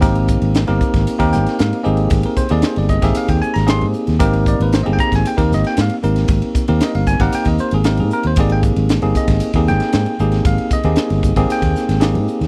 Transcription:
0.01 fretless electric bass G#1, tine electric piano A#3 C4 D#4 G4 A#4, kick, hi-hat pedal, ride
0.15 ride
0.28 kick, hi-hat pedal
0.42 fretless electric bass G#1, ride
0.55 snare, hi-hat pedal, ride
0.67 fretless electric bass G1, tine electric piano A#3 C4 D#4 G4 A#4, snare, ride
0.81 kick, hi-hat pedal
0.94 fretless electric bass G#1, kick, snare, ride
1.07 hi-hat pedal, ride
1.19 fretless electric bass D#2, tine electric piano A#3 C4 D#4 G4 A#4, kick, ride
1.32 fretless electric bass G#1, tine electric piano G5, snare, hi-hat pedal
1.46 snare, ride
1.59 fretless electric bass G#2, tine electric piano F5, snare, hi-hat pedal, ride
1.73 ride
1.84 fretless electric bass G#1, tine electric piano A#3 C4 D#4 G4 G#4 D#5, hi-hat pedal
1.97 ride
2.10 fretless electric bass G#1, kick, hi-hat pedal, ride
2.23 tine electric piano A#4, ride
2.36 tine electric piano C5, muted fretless electric bass stroke, kick, hi-hat pedal
2.49 fretless electric bass D#2, tine electric piano A#3 C4 D#4 G4 G#4 D5, ride
2.62 tine electric piano C5, snare, hi-hat pedal, ride
2.76 fretless electric bass G1, tine electric piano D5, snare, ride
2.88 tine electric piano D#5, kick, hi-hat pedal
3.02 fretless electric bass G#1, tine electric piano A#3 C4 D#4 G4 G#4 E5, kick, snare, ride
3.15 tine electric piano F5, muted fretless electric bass stroke, hi-hat pedal, ride
3.28 fretless electric bass D#2, tine electric piano G5, kick, ride
3.42 tine electric piano G#5, muted fretless electric bass stroke, hi-hat pedal
3.54 fretless electric bass G#1, tine electric piano A#5, snare, ride
3.66 tine electric piano A#3 C4 D#4 G4 G#4 C6, snare, hi-hat pedal, ride
3.81 fretless electric bass G#2, ride
3.94 hi-hat pedal
4.07 fretless electric bass D#2, snare, ride
4.19 fretless electric bass G#1, tine electric piano A#3 C4 D#4 G4 A#4, kick, hi-hat pedal, ride
4.33 ride
4.46 tine electric piano D5, kick, hi-hat pedal
4.60 fretless electric bass G#1, tine electric piano B4, ride
4.72 tine electric piano C5, snare, hi-hat pedal, ride
4.83 tine electric piano A#3 C4 D#4 G4 G#4 D#5, ride
4.88 fretless electric bass G1
4.93 tine electric piano G5
4.99 tine electric piano A#5, kick, hi-hat pedal
5.12 fretless electric bass G#1, tine electric piano G#5, kick, snare, ride
5.25 tine electric piano G5, hi-hat pedal, ride
5.37 fretless electric bass D#2, tine electric piano A#3 C4 D#4 G4 A#4, kick, ride
5.42 tine electric piano A#4
5.52 fretless electric bass G#1, tine electric piano D#5, snare, hi-hat pedal
5.64 tine electric piano G5, snare, ride
5.77 fretless electric bass G#2, snare, hi-hat pedal, ride
5.81 tine electric piano F5
5.89 ride
6.03 fretless electric bass G#1, tine electric piano A#3 C4 D#4 G4 A#4, hi-hat pedal
6.16 snare, ride
6.28 fretless electric bass G#1, kick, hi-hat pedal, ride
6.42 ride
6.55 muted fretless electric bass stroke, kick, hi-hat pedal
6.68 fretless electric bass D#2, tine electric piano A#3 C4 D#4 G4 A#4, ride
6.80 tine electric piano D#5, snare, hi-hat pedal, ride
6.95 fretless electric bass G1, tine electric piano F5, snare, ride
7.06 tine electric piano G#5, kick, hi-hat pedal
7.20 fretless electric bass G#1, tine electric piano A#3 C4 D#4 G4 A#4 F#5, kick, ride
7.32 tine electric piano G5, muted fretless electric bass stroke, hi-hat pedal, ride
7.45 fretless electric bass D#2, tine electric piano D#5, kick, ride
7.58 tine electric piano C5, muted fretless electric bass stroke, hi-hat pedal
7.71 fretless electric bass G#1, tine electric piano G#4, ride
7.84 tine electric piano A#3 C4 D#4 G4 A#4, snare, hi-hat pedal, ride
7.97 fretless electric bass G#2, tine electric piano G#4, ride
8.10 tine electric piano A#4, hi-hat pedal
8.23 fretless electric bass D#2, tine electric piano C5, ride
8.36 fretless electric bass G#1, tine electric piano A#3 C4 D#4 G4 G#4, kick, hi-hat pedal, ride
8.40 tine electric piano D5
8.49 tine electric piano G5, ride
8.63 kick, hi-hat pedal
8.76 fretless electric bass G#1, ride
8.89 snare, hi-hat pedal, ride
9.02 fretless electric bass G1, tine electric piano A#3 C4 D#4 G4 G#4, ride
9.15 tine electric piano D#5, kick, hi-hat pedal
9.28 fretless electric bass G#1, kick, snare, ride
9.40 hi-hat pedal, ride
9.53 fretless electric bass D#2, tine electric piano A#3 C4 D#4 G4 G#4, kick, ride
9.67 fretless electric bass G#1, tine electric piano G5, snare, hi-hat pedal
9.80 snare, ride
9.92 fretless electric bass G#2, snare, hi-hat pedal, ride
10.06 ride
10.19 fretless electric bass G#1, tine electric piano A#3 C4 D#4 G4 G#4, hi-hat pedal
10.32 snare, ride
10.45 fretless electric bass G#1, tine electric piano F5, kick, hi-hat pedal, ride
10.58 ride
10.70 tine electric piano D#5, muted fretless electric bass stroke, kick, hi-hat pedal
10.83 fretless electric bass D#2, tine electric piano A#3 C4 D#4 G4 G#4, ride
10.96 snare, hi-hat pedal, ride
11.10 fretless electric bass G1, snare, ride
11.23 kick, hi-hat pedal
11.36 fretless electric bass G#1, tine electric piano A#3 C4 D#4 G4 G#4, kick, ride
11.50 tine electric piano G5, muted fretless electric bass stroke, hi-hat pedal, ride
11.62 fretless electric bass D#2, kick, ride
11.76 muted fretless electric bass stroke, snare, hi-hat pedal
11.89 fretless electric bass G#1, snare, ride
12.00 tine electric piano A#3 C4 D#4 G4 G#4, snare, hi-hat pedal, ride
12.15 fretless electric bass G#2, ride
12.27 hi-hat pedal
12.41 fretless electric bass D#2, snare, ride

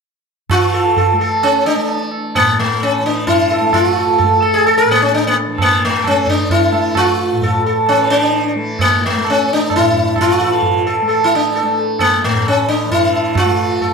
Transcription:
0.50 tanpura E3, sitar F4, tabla na, tabla ge
0.74 sitar A4
0.97 sitar A4, tabla tin, tabla ge
1.13 tanpura A3
1.20 sitar A4, tabla na
1.43 sitar C#4, tabla na
1.66 sitar D4, tabla na
1.75 tanpura A3
1.89 tabla tin
2.11 tabla na
2.35 tanpura A2, sitar A#3, tabla na, tabla ge
2.59 sitar A3
2.81 sitar C#4, tabla na
2.99 tanpura E3
3.06 sitar D4
3.27 sitar E4, tabla tin, tabla ge
3.50 sitar A4, tabla na
3.60 tanpura A3
3.73 sitar E4, tabla na, tabla ge
3.85 sitar F4
3.96 sitar A4
4.18 sitar A4, tabla tin, tabla ge
4.23 tanpura A3
4.42 sitar A4, tabla na
4.54 sitar G#4
4.66 sitar A4, tabla na
4.78 sitar A#4
4.85 tanpura A2
4.91 sitar A#3
5.02 sitar C#4
5.12 sitar D4, tabla tin
5.27 sitar A#3
5.48 tanpura E3
5.58 sitar A#3, tabla na, tabla ge
5.85 sitar A3
6.04 sitar C#4, tabla na, tabla ge
6.09 tanpura A3
6.27 sitar D4, tabla ge
6.50 sitar E4, tabla tin, tabla ge
6.72 tanpura A3, tabla na
6.95 sitar F4, tabla na, tabla ge
7.33 tanpura A2
7.41 sitar A4, tabla tin, tabla ge
7.66 sitar A4
7.87 sitar C#4, tabla na
7.93 tanpura E3
8.10 sitar C#4
8.21 sitar D4
8.33 tabla tin
8.55 tanpura A3
8.79 sitar A#3, tabla na, tabla ge
9.01 tabla te
9.06 sitar A3
9.16 tanpura A3
9.25 tabla na
9.30 sitar C#4
9.53 sitar D4
9.70 tabla na, tabla ge
9.76 tanpura A2, sitar E4
9.93 tabla ge
10.16 tabla na, tabla ge
10.21 sitar F4
10.40 tanpura E3, sitar A4
10.62 tabla tin, tabla ge
10.87 sitar A4
11.02 tanpura A3
11.08 sitar A4, tabla na
11.24 sitar E4
11.35 sitar D4
11.54 sitar A4, tabla tin
11.62 tanpura A3
11.99 sitar A#3, tabla na, tabla ge
12.22 tanpura A2, sitar A3, tabla te
12.34 tabla ge
12.46 sitar C#4, tabla na
12.69 sitar D4
12.85 tanpura E3
12.91 sitar E4, tabla tin, tabla ge
13.13 tabla na
13.35 sitar F4, tabla na, tabla ge
13.45 tanpura A3
13.81 sitar A4, tabla tin, tabla ge

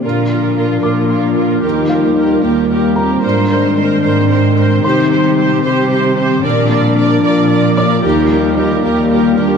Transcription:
0.03 cello section A#2, ambient pad F3 A#3 F4 A#4, french horn section D4, viola section F4 A#4
0.30 viola section F4 A#4
0.57 viola section F4 A#4
0.83 cello section A#2, viola section F4 A#4, felt piano D6
1.10 viola section F4 A#4
1.36 viola section F4 A#4
1.63 cello section D#2, ambient pad G3, french horn section D#4, viola section G4 A#4
1.89 viola section G4 A#4, felt piano F5
2.16 viola section G4 A#4
2.43 cello section D#2, french horn section A#3, viola section G4 A#4
2.70 viola section G4 A#4
2.95 french horn section C4, viola section G4 A#4, felt piano A#4 A#5
3.23 cello section G#2, ambient pad D#3 G#3 C4, french horn section D4, viola section A#4 C5
3.50 viola section A#4 C5
3.77 viola section A#4 C5
4.04 cello section G#2, viola section A#4 C5
4.30 viola section A#4 C5
4.57 viola section A#4 C5
4.83 cello section C3, ambient pad G3 G4, french horn section D#4, viola section G4 C5, felt piano C5 C6
5.11 viola section G4 C5
5.37 viola section G4 C5
5.63 cello section C3, french horn section C4, viola section G4 C5
5.90 viola section G4 C5
6.16 french horn section C4, viola section G4 C5
6.43 cello section A#2, ambient pad F3 A#3 F4 A#4, french horn section D4, viola section A#4 D5
6.70 viola section A#4 D5
6.97 viola section A#4 D5
7.24 cello section A#2, viola section A#4 D5
7.51 viola section A#4 D5
7.77 viola section A#4 D5, felt piano D5 D6
8.04 cello section D#2, ambient pad G3, french horn section D#4, viola section G4 A#4
8.31 viola section G4 A#4
8.58 viola section G4 A#4
8.84 cello section D#2, french horn section A#3, viola section G4 A#4
9.11 viola section G4 A#4
9.37 french horn section D4, viola section G4 A#4

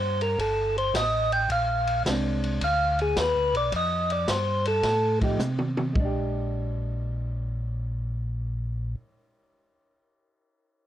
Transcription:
Already playing: tonewheel organ G2 C5
0.21 tonewheel organ A#4, ride
0.38 tonewheel organ G1 A4, kick, ride
0.77 tonewheel organ C5, ride
0.94 tonewheel organ A1 D#5, kick, snare, hi-hat pedal, ride
1.32 tonewheel organ G5, ride
1.49 tonewheel organ A#1 F5, kick, ride
1.87 ride
2.05 tonewheel organ C2, hollow-body jazz guitar G#3 C4 D4, kick, snare, hi-hat pedal, ride
2.44 ride
2.61 tonewheel organ D2 F5, kick, ride
2.99 tonewheel organ G#4, ride
3.16 tonewheel organ D#2 B4, kick, snare, hi-hat pedal, ride
3.36 tonewheel organ D2
3.54 tonewheel organ B1 D5, ride
3.72 tonewheel organ F2 D#5, kick, ride
4.10 tonewheel organ D5, ride
4.28 tonewheel organ G2 C5, kick, snare, hi-hat pedal, ride
4.65 tonewheel organ A4, ride
4.83 tonewheel organ A2, kick, snare, ride
5.21 hollow-body jazz guitar F3 A3 D#4 G4, kick, ride
5.39 tonewheel organ C3, hi-hat pedal, mid tom
5.58 high tom
5.77 high tom
5.93 tonewheel organ A#1, hollow-body jazz guitar G#3, kick
6.00 hollow-body jazz guitar D4
6.05 hollow-body jazz guitar G4

